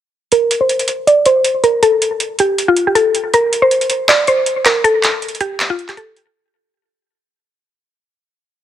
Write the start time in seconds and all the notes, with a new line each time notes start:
0.32 A#4, closed hi-hat
0.51 closed hi-hat
0.61 C5
0.69 closed hi-hat
0.79 closed hi-hat
0.88 closed hi-hat
1.07 D5, closed hi-hat
1.26 C5, closed hi-hat
1.44 closed hi-hat
1.64 A#4, closed hi-hat
1.83 A4, closed hi-hat
2.02 closed hi-hat
2.20 closed hi-hat
2.39 G4, closed hi-hat
2.58 closed hi-hat
2.68 F4
2.76 closed hi-hat
2.87 G4
2.95 A4, closed hi-hat
3.15 closed hi-hat
3.34 A#4, closed hi-hat
3.53 closed hi-hat
3.62 C5
3.71 closed hi-hat
3.81 closed hi-hat
3.90 closed hi-hat
4.09 D5, clap, closed hi-hat
4.27 C5, closed hi-hat
4.46 closed hi-hat
4.65 A#4, clap, closed hi-hat
4.84 A4, closed hi-hat
5.03 clap, closed hi-hat
5.22 closed hi-hat
5.28 closed hi-hat
5.35 closed hi-hat
5.41 G4, closed hi-hat
5.60 clap, closed hi-hat
5.70 F4
5.79 closed hi-hat
5.89 G4, clap, closed hi-hat
5.97 A4, closed hi-hat
6.16 closed hi-hat